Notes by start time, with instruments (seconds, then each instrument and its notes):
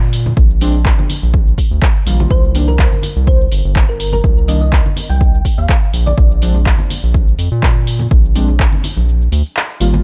Already playing: analog synth bass A#2
0.02 shaker
0.13 open hi-hat, shaker
0.26 high conga, low conga, shaker
0.37 analog synth bass A#1, kick, shaker
0.51 shaker
0.61 synth stab F3 G#3 C4 D4, open hi-hat, shaker
0.75 shaker
0.85 kick, clap, shaker
0.98 high conga, low conga, shaker
1.10 open hi-hat, low conga, shaker
1.22 analog synth bass A#1, high conga, shaker
1.34 kick, shaker
1.47 shaker
1.58 kick, open hi-hat, shaker
1.71 analog synth bass D2, shaker
1.82 kick, clap, shaker
1.96 shaker
2.06 analog synth bass A#1, synth stab D#3 G3 A#3 F4, open hi-hat, shaker
2.20 low conga, shaker
2.31 analog synth bass C2, synth pluck C5, kick, shaker
2.44 shaker
2.55 synth stab D#3 G3 A#3 D4, open hi-hat, shaker
2.68 synth pluck A#4, high conga, shaker
2.79 kick, clap, shaker
2.92 low conga, shaker
3.03 open hi-hat, low conga, shaker
3.16 analog synth bass C2, shaker
3.27 synth pluck C5, kick, shaker
3.41 shaker
3.51 analog synth bass G1, open hi-hat, shaker
3.64 analog synth bass G1, shaker
3.76 kick, clap, shaker
3.89 synth pluck A#4, shaker
4.00 synth pluck A#4, open hi-hat, shaker
4.13 synth pluck A#4, high conga, low conga, shaker
4.24 analog synth bass C2, kick, shaker
4.38 shaker
4.48 synth stab D#3 G3 A#3 D4, synth pluck D#5, open hi-hat, shaker
4.61 synth pluck D#5, shaker
4.72 kick, clap, shaker
4.86 low conga, shaker
4.97 open hi-hat, low conga, shaker
5.10 analog synth bass C2, synth pluck G5, high conga, shaker
5.21 kick, shaker
5.34 shaker
5.45 kick, open hi-hat, shaker
5.58 analog synth bass D#2, synth pluck F5, shaker
5.69 kick, clap, shaker
5.83 shaker
5.93 analog synth bass A#1, open hi-hat, shaker
6.06 synth pluck D5, low conga, shaker
6.18 analog synth bass A#1, kick, shaker
6.31 shaker
6.42 synth stab F3 G#3 C4 D4, open hi-hat, shaker
6.55 high conga, shaker
6.66 kick, clap, shaker
6.78 low conga, shaker
6.90 open hi-hat, low conga, shaker
7.03 analog synth bass A#1, shaker
7.14 kick, shaker
7.28 shaker
7.38 analog synth bass F2, open hi-hat, shaker
7.52 analog synth bass A#2, shaker
7.63 kick, clap, shaker
7.77 shaker
7.87 open hi-hat, shaker
7.99 high conga, low conga, shaker
8.11 analog synth bass A#1, kick, shaker
8.25 shaker
8.35 synth stab F3 G#3 C4 D4, open hi-hat, shaker
8.48 high conga, shaker
8.60 kick, clap, shaker
8.73 low conga, shaker
8.84 open hi-hat, low conga, shaker
8.97 analog synth bass A#1, high conga, shaker
9.09 shaker
9.22 shaker
9.32 analog synth bass D2, open hi-hat, shaker
9.46 shaker
9.57 clap, shaker
9.70 shaker
9.80 analog synth bass G#1, synth stab D#3 G3 A#3 F4, open hi-hat, shaker
9.94 low conga, shaker